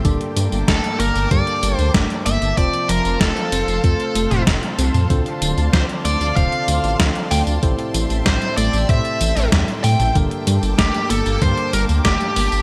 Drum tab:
HH |xxxxxxxxxxxxxxxx|xxxxxxxxxxxxxxxx|xxxxxxxxxxxxxxox|xxxxxxxxxxxxxxox|
TB |x-xxx-xxx-xxx-xx|x-xxx-xxx-xxx-xx|x-xxx-xxx-xxx-xx|x-xxx-xxx-xxx-xx|
SD |----o-------o---|----o------oo---|----o-------o---|----o------oo---|
T2 |----------------|-----------o---o|----------------|---------------o|
BD |o---o---o---o---|o---o---o---o---|o---o---o---o---|o---o---o---o---|

HH |xxxxxxxxxxxxxxox|
TB |x-xxx-xxx-xxx-xx|
SD |----o-------o---|
T2 |----------------|
BD |o---o---o---o---|